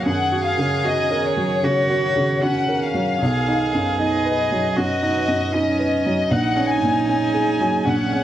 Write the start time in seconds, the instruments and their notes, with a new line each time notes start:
Already playing: ambient pad D#3 A#4
0.05 felt piano F#2, ambient pad F#4, cello G#4, violin section F#5
0.32 felt piano F#4
0.46 violin section F5
0.58 felt piano C#3
0.85 felt piano F#4, violin section D#5
1.11 felt piano A#4
1.26 violin section C#5
1.37 felt piano F#3
1.63 felt piano C#3, cello F#4
1.90 felt piano F#4
2.16 felt piano C#3
2.41 cello C#4, felt piano F#4, violin section F#5
2.68 felt piano A#4
2.83 violin section F5
2.94 felt piano F#3
3.22 felt piano B1, ambient pad F#3 D#4 B4, cello G#4
3.48 felt piano D#4
3.75 felt piano F#2
3.99 felt piano D#4, violin section D#5
4.25 felt piano B4
4.51 felt piano F#3
4.76 felt piano F#2, cello F#4, violin section D#5
5.02 felt piano D#4
5.28 felt piano F#2
5.53 cello C#4, felt piano D#4
5.79 felt piano B4
6.06 felt piano F#3
6.31 felt piano A#1, ambient pad C#4 G#4, cello D#4, violin section F#5
6.56 felt piano C#4
6.69 violin section G#5
6.83 felt piano A#2
7.08 felt piano C#4, violin section G#5
7.34 felt piano G#4
7.60 felt piano F#3
7.86 felt piano A#1, cello C#4, violin section F#5
8.13 felt piano C#4